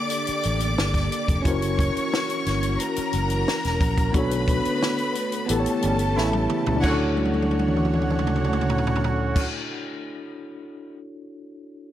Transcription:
0.00 1.41 D3 medium
0.00 1.05 A#3 medium
0.00 4.10 A#3 medium
0.00 1.06 D4 medium
0.00 1.07 G4 medium
0.00 1.42 G4 medium
0.00 1.08 A4 medium
0.00 1.41 A4 medium
0.00 1.12 D5 medium
0.00 1.41 D5 medium
0.00 1.41 D6 medium
0.10 closed hi-hat medium
0.27 muted fingered electric bass stroke soft
0.27 closed hi-hat medium
0.43 0.75 A1 medium
0.43 closed hi-hat medium
0.60 closed hi-hat soft
0.78 1.08 G1 medium
0.78 snare loud
0.94 kick medium
0.94 snare soft
0.94 closed hi-hat medium
1.12 closed hi-hat medium
1.28 1.43 F1 medium
1.28 kick medium
1.28 closed hi-hat medium
1.42 1.90 F#1 loud
1.42 4.12 E3 medium
1.42 4.09 C#4 medium
1.42 4.12 C#4 medium
1.42 4.10 E4 medium
1.42 5.45 F#4 medium
1.42 4.11 F#4 medium
1.42 2.77 C#5 medium
1.42 2.77 C#6 medium
1.42 kick loud
1.42 closed hi-hat medium
1.48 4.12 A#4 medium
1.48 1.54 C5 medium
1.56 4.16 C#5 medium
1.62 closed hi-hat medium
1.79 kick loud
1.79 closed hi-hat medium
1.97 muted fingered electric bass stroke soft
1.97 closed hi-hat soft
2.14 snare loud
2.30 closed hi-hat soft
2.46 2.76 G1 medium
2.46 snare soft
2.46 closed hi-hat medium
2.63 closed hi-hat medium
2.80 4.12 A#4 medium
2.80 4.12 A#5 medium
2.80 closed hi-hat medium
2.96 muted fingered electric bass stroke soft
2.96 closed hi-hat medium
3.13 3.43 F#1 loud
3.13 closed hi-hat medium
3.30 closed hi-hat soft
3.48 snare loud
3.64 3.79 E1 medium
3.64 snare soft
3.64 closed hi-hat medium
3.81 4.11 A#1 loud
3.81 kick loud
3.81 closed hi-hat medium
3.98 kick medium
3.98 closed hi-hat medium
4.12 4.59 B1 loud
4.12 5.48 D3 medium
4.12 6.81 A3 medium
4.12 5.45 B3 medium
4.12 5.48 B3 medium
4.12 5.46 D4 medium
4.12 5.47 F#4 medium
4.12 5.46 B4 medium
4.12 5.46 B5 loud
4.12 kick loud
4.12 closed hi-hat medium
4.17 5.47 A4 medium
4.17 5.48 C#5 medium
4.31 closed hi-hat medium
4.48 kick loud
4.48 closed hi-hat medium
4.65 muted fingered electric bass stroke soft
4.65 closed hi-hat medium
4.83 snare loud
4.98 closed hi-hat soft
5.15 closed hi-hat medium
5.32 closed hi-hat medium
5.46 5.64 A1 loud
5.46 6.82 E3 medium
5.46 6.79 B3 medium
5.46 6.82 C#4 medium
5.46 6.79 E4 medium
5.46 6.82 G4 medium
5.46 6.81 G4 medium
5.46 6.81 A4 medium
5.46 6.81 A5 medium
5.46 closed hi-hat medium
5.51 6.82 A4 medium
5.51 5.58 B4 medium
5.60 6.86 C#5 medium
5.66 muted fingered electric bass stroke medium
5.66 closed hi-hat medium
5.82 6.17 G1 medium
5.82 5.97 A2 medium
5.82 5.97 C#3 medium
5.82 5.97 G3 medium
5.82 5.97 C#4 medium
5.82 closed hi-hat medium
5.99 closed hi-hat soft
6.16 6.46 A1 medium
6.16 6.80 C#3 medium
6.16 6.80 E3 medium
6.16 6.80 A3 medium
6.16 6.80 E4 loud
6.16 snare medium
6.33 high tom medium
6.50 mid tom loud
6.67 6.82 C#2 loud
6.67 floor tom loud
6.76 9.42 D4 medium
6.81 9.46 D2 loud
6.81 9.45 D3 medium
6.81 9.45 F#3 medium
6.81 9.45 A3 medium
6.81 9.45 C#4 medium
6.81 9.45 D4 medium
6.81 9.44 E4 medium
6.81 9.45 F#4 loud
6.81 9.45 F#4 medium
6.81 9.45 C#5 loud
6.81 9.45 C#5 medium
6.81 9.45 F#5 loud
6.81 kick loud
6.81 crash medium
6.88 9.47 A4 medium
6.88 9.49 C#5 medium
7.17 high tom soft
7.25 high tom medium
7.34 high tom medium
7.42 high tom medium
7.51 high tom medium
7.59 high tom medium
7.68 mid tom medium
7.77 mid tom medium
7.85 mid tom medium
7.94 mid tom medium
8.02 mid tom medium
8.10 mid tom medium
8.19 mid tom medium
8.27 mid tom medium
8.36 mid tom medium
8.45 mid tom medium
8.53 mid tom medium
8.61 mid tom medium
8.70 floor tom medium
8.78 floor tom medium
8.87 floor tom medium
8.96 floor tom medium
9.04 floor tom medium
9.36 kick loud
9.36 crash loud

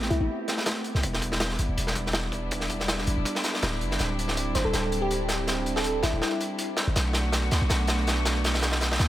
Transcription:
0.00 1.00 A3 medium
0.00 3.95 B3 medium
0.00 1.00 C4 medium
0.00 1.00 G4 medium
0.00 snare medium
0.10 0.19 C2 medium
0.10 0.18 E4 medium
0.10 closed hi-hat medium
0.20 0.28 A1 medium
0.20 0.72 E4 medium
0.48 snare medium
0.48 closed hi-hat medium
0.57 snare soft
0.66 snare loud
0.66 closed hi-hat medium
0.84 closed hi-hat medium
0.95 1.02 C2 medium
0.95 snare soft
1.03 1.58 E1 loud
1.03 6.92 G3 medium
1.03 6.92 D4 medium
1.03 6.92 E4 medium
1.03 kick loud
1.03 closed hi-hat medium
1.13 snare soft
1.22 kick loud
1.22 closed hi-hat medium
1.32 snare medium
1.40 snare loud
1.40 closed hi-hat medium
1.50 snare soft
1.59 1.68 G1 medium
1.59 closed hi-hat medium
1.69 1.76 E1 medium
1.77 3.06 E1 loud
1.77 closed hi-hat medium
1.87 snare soft
1.95 kick loud
1.95 closed hi-hat medium
2.06 snare soft
2.13 snare loud
2.13 closed hi-hat medium
2.32 kick medium
2.32 closed hi-hat medium
2.51 kick loud
2.51 closed hi-hat medium
2.60 snare soft
2.69 kick medium
2.69 closed hi-hat medium
2.80 snare soft
2.88 snare loud
2.88 closed hi-hat medium
2.98 snare medium
3.07 3.16 G1 medium
3.07 closed hi-hat medium
3.17 3.25 E1 loud
3.25 kick loud
3.25 closed hi-hat medium
3.35 snare medium
3.44 snare medium
3.44 closed hi-hat medium
3.54 snare soft
3.62 3.83 D1 medium
3.62 snare loud
3.62 closed hi-hat medium
3.81 3.98 F#1 medium
3.81 closed hi-hat medium
3.91 snare soft
3.99 4.54 D1 loud
3.99 6.93 C4 medium
3.99 snare soft
3.99 closed hi-hat medium
4.19 closed hi-hat medium
4.28 snare soft
4.37 closed hi-hat medium
4.55 4.64 G1 medium
4.55 4.63 C5 medium
4.55 snare medium
4.55 closed hi-hat medium
4.65 4.73 D1 loud
4.65 5.16 A4 medium
4.73 6.02 D1 loud
4.73 snare medium
4.73 closed hi-hat medium
4.92 closed hi-hat medium
5.02 5.24 G4 medium
5.11 closed hi-hat medium
5.29 snare medium
5.29 closed hi-hat medium
5.47 snare medium
5.47 closed hi-hat medium
5.66 closed hi-hat medium
5.76 6.01 A4 medium
5.76 snare medium
5.84 closed hi-hat medium
6.03 6.12 G1 medium
6.03 6.32 E4 medium
6.03 snare medium
6.03 closed hi-hat medium
6.13 6.21 D1 loud
6.22 snare medium
6.40 closed hi-hat medium
6.58 closed hi-hat medium
6.77 snare medium
6.77 closed hi-hat medium
6.87 6.95 G1 medium
6.96 7.50 B1 loud
6.96 9.08 A3 medium
6.96 9.08 B3 medium
6.96 9.08 D4 medium
6.96 9.08 F#4 medium
6.96 snare medium
6.96 closed hi-hat medium
7.13 snare medium
7.13 closed hi-hat medium
7.32 snare medium
7.32 closed hi-hat medium
7.51 7.60 D2 medium
7.51 snare medium
7.51 closed hi-hat medium
7.61 7.69 B1 medium
7.69 8.98 B1 loud
7.69 snare medium
7.69 closed hi-hat medium
7.87 snare medium
7.87 closed hi-hat medium
8.07 snare medium
8.07 closed hi-hat medium
8.25 snare medium
8.25 closed hi-hat medium
8.44 snare medium
8.44 closed hi-hat medium
8.54 snare medium
8.62 snare medium
8.62 closed hi-hat medium
8.72 snare medium
8.81 snare medium
8.81 closed hi-hat medium
8.92 snare medium
8.99 9.08 D2 medium
8.99 snare loud
8.99 closed hi-hat medium

